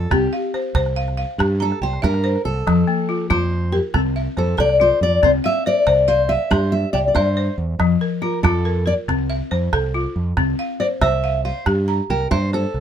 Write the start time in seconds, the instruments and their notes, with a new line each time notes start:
Already playing: balafon F4, steel-string acoustic guitar A4
0.11 fingered electric bass C2, balafon C4, steel-string acoustic guitar G4, calabash thump, calabash click
0.33 balafon F5
0.54 balafon C5, calabash click
0.75 fingered electric bass C2, balafon C5, calabash thump, calabash click
0.86 calabash click
0.96 balafon F5, calabash click
1.08 calabash click
1.17 balafon F5
1.38 fingered electric bass G2, balafon G4, calabash thump, calabash click
1.60 steel-string acoustic guitar A4, balafon A#5
1.72 calabash click
1.81 fingered electric bass C2, steel-string acoustic guitar C5, balafon G5
1.93 calabash click
2.02 fingered electric bass G2, steel-string acoustic guitar A#4, balafon E5, calabash thump, calabash click
2.14 calabash click
2.24 balafon C5
2.36 calabash click
2.45 fingered electric bass C2, steel-string acoustic guitar A4
2.67 fingered electric bass F2, balafon F3, calabash thump, calabash click
2.87 balafon A#3
3.09 balafon F4
3.30 fingered electric bass F2, balafon F4, steel-string acoustic guitar C5, calabash thump, calabash click
3.72 steel-string acoustic guitar G4, balafon A#4
3.94 fingered electric bass C2, balafon C4, steel-string acoustic guitar A4, calabash thump, calabash click
4.16 balafon E5
4.37 fingered electric bass F2, steel-string acoustic guitar A4, balafon C5, calabash click
4.58 fingered electric bass C2, balafon A4, steel-string acoustic guitar D5, calabash thump, calabash click
4.69 calabash click
4.80 balafon F4, steel-string acoustic guitar C5
5.01 fingered electric bass F2, steel-string acoustic guitar D5
5.23 fingered electric bass C2, balafon C4, steel-string acoustic guitar C5, calabash thump, calabash click
5.44 steel-string acoustic guitar E5, balafon F5
5.66 balafon C5, steel-string acoustic guitar D5
5.87 fingered electric bass C2, balafon C5, calabash thump, calabash click
6.08 steel-string acoustic guitar C5, balafon F5
6.29 steel-string acoustic guitar E5, balafon F5
6.51 fingered electric bass G2, balafon G4, steel-string acoustic guitar C5, calabash thump, calabash click
6.72 steel-string acoustic guitar E5
6.93 fingered electric bass C2, steel-string acoustic guitar D5, balafon G5, calabash click
7.08 steel-string acoustic guitar D5
7.15 fingered electric bass G2, steel-string acoustic guitar C5, balafon E5, calabash thump, calabash click
7.26 calabash click
7.37 balafon C5
7.58 fingered electric bass E2
7.79 fingered electric bass F2, balafon F3, calabash thump, calabash click
8.01 balafon A#4
8.22 balafon F4, steel-string acoustic guitar A#4
8.43 fingered electric bass F2, balafon F4, steel-string acoustic guitar A4, calabash thump, calabash click
8.65 balafon A#4
8.86 balafon A#4, steel-string acoustic guitar D5
9.08 fingered electric bass C2, balafon C4, calabash thump, calabash click
9.30 balafon E5
9.51 fingered electric bass F2, balafon C5, calabash click
9.73 fingered electric bass C2, balafon A4, calabash thump, calabash click
9.84 calabash click
9.94 balafon F4
10.16 fingered electric bass F2
10.37 fingered electric bass C2, balafon C4, calabash thump, calabash click
10.59 balafon F5
10.80 balafon C5, steel-string acoustic guitar D5
11.01 fingered electric bass C2, balafon C5, steel-string acoustic guitar E5, calabash thump, calabash click
11.12 calabash click
11.24 balafon F5
11.45 steel-string acoustic guitar C5, balafon F5
11.66 fingered electric bass G2, balafon G4, calabash thump, calabash click
11.88 balafon A#5
12.10 fingered electric bass C2, steel-string acoustic guitar A#4, balafon G5, calabash click
12.21 calabash click
12.31 fingered electric bass G2, steel-string acoustic guitar C5, balafon E5, calabash thump, calabash click
12.53 steel-string acoustic guitar A4, balafon C5, calabash click
12.74 fingered electric bass C2, calabash click